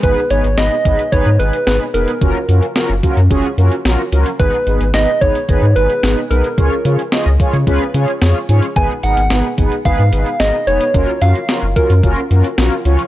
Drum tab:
HH |x-xxx-xxx-xxx-xx|x-xxx-xxx-xxx-xx|x-xxx-xxx-xxx-xx|x-xxx-xxx-xxx-xx|
SD |----o-------o---|----o-------o---|----o-------o---|----o-------o---|
BD |o-----o-o-------|o-----o-o-------|o-----o-o-------|o-----o-o-------|

HH |x-xxx-xxx-xxx-xx|x-xxx-xxx-xxx-xx|
SD |----o-------o---|----o-------o---|
BD |o-----o-o-------|o-----o-o-------|